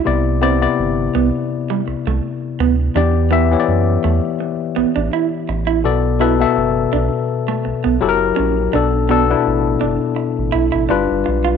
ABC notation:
X:1
M:4/4
L:1/16
Q:"Swing 16ths" 1/4=83
K:Clyd
V:1 name="Tine electric piano"
[C,B,Ed]2 [C,B,Ed] [C,B,Ed]6- [C,B,Ed] z6 | [E,B,Gd]2 [E,B,Ge] [E,B,G^cd]6- [E,B,Gcd] z6 | [B,,B,Ad]2 [B,,B,AB] [B,,B,Ae]6- [B,,B,Ae] z2 [F,EGA^A]4 | [B,,B,DA]2 [B,,B,DA] [B,,B,DE]6- [B,,B,DE] z2 [G,D=FB]4 |]
V:2 name="Clean electric guitar"
z2 C z3 B, z2 G, z A, z2 B, z | D z B, z3 A, z3 B, D E z2 E | z2 E z3 D z2 A, z B, z2 ^C z | D z B, z3 D z3 E E D z2 =F |]
V:3 name="Analog synth bass" clef=bass
C,,4 G,,,2 C,, z3 C,, C,, z2 D,,2 | E,,4 F,,2 E,, z3 A,,, A,,, z2 A,,,2 | B,,,4 F,,,2 B,,, z3 B,,, B,,, F,,,2 ^A,,,2 | B,,,4 A,,,2 F,,, z2 A,,, B,,, A,,, G,,, G,,, B,,,2 |]